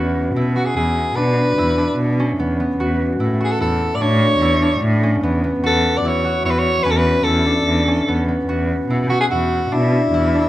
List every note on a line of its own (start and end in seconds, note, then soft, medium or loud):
0.00 0.29 E2 medium
0.00 2.39 B3 medium
0.00 1.23 C#4 medium
0.00 0.36 E4 medium
0.00 0.55 F#4 medium
0.35 0.52 B2 medium
0.35 0.76 E4 medium
0.56 2.80 F#4 medium
0.56 0.67 F#4 medium
0.65 0.76 G#4 medium
0.75 1.10 E2 medium
0.75 1.58 E4 medium
0.75 1.17 G#4 medium
1.16 1.51 B2 medium
1.16 1.78 D4 medium
1.16 1.98 B4 medium
1.58 1.93 E2 medium
1.58 3.20 E4 medium
1.78 2.26 D4 medium
1.97 2.32 B2 medium
2.20 4.07 C#4 medium
2.39 2.73 E2 medium
2.39 2.60 B3 medium
2.60 5.23 B3 medium
2.78 3.13 E2 medium
2.78 3.40 F#4 medium
3.20 3.37 A2 medium
3.20 3.60 E4 medium
3.40 5.63 F#4 medium
3.40 3.53 G#4 medium
3.51 3.61 A4 medium
3.59 3.94 E2 medium
3.59 4.41 E4 medium
3.59 3.97 A4 medium
3.95 4.34 A2 medium
3.95 4.03 D5 medium
4.01 4.62 D4 medium
4.01 4.82 C#5 medium
4.40 4.75 E2 medium
4.40 6.05 E4 medium
4.62 5.09 D4 medium
4.81 5.16 A2 medium
5.03 6.85 C#4 medium
5.22 5.57 E2 medium
5.22 5.43 B3 medium
5.44 8.08 B3 medium
5.61 5.97 E2 medium
5.61 6.24 F#4 medium
5.66 5.99 A4 medium
5.97 6.09 D5 medium
6.03 6.20 E2 medium
6.03 6.45 E4 medium
6.08 6.45 C#5 medium
6.25 8.48 F#4 medium
6.43 6.78 E2 medium
6.43 7.26 E4 medium
6.43 6.52 C#5 medium
6.50 6.60 B4 medium
6.59 6.85 C#5 medium
6.84 7.20 E2 medium
6.84 7.52 C#4 medium
6.84 6.92 B4 medium
6.91 6.99 A4 medium
6.97 7.25 B4 medium
7.24 7.60 E2 medium
7.24 8.90 E4 medium
7.24 8.27 A4 medium
7.46 7.93 D4 medium
7.66 8.01 E2 medium
7.87 9.78 C#4 medium
8.07 8.42 E2 medium
8.07 8.28 B3 medium
8.28 10.49 B3 medium
8.48 8.83 E2 medium
8.48 9.10 F#4 medium
8.89 9.07 B2 medium
8.89 9.30 E4 medium
9.10 9.20 F#4 medium
9.10 10.49 F#4 medium
9.21 9.25 G#4 medium
9.30 9.66 E2 medium
9.30 10.14 E4 medium
9.30 9.75 F#4 medium
9.72 10.07 B2 medium
9.72 10.34 D4 medium
9.72 10.49 E4 medium
10.13 10.49 E2 medium
10.13 10.49 E4 medium
10.35 10.49 D4 medium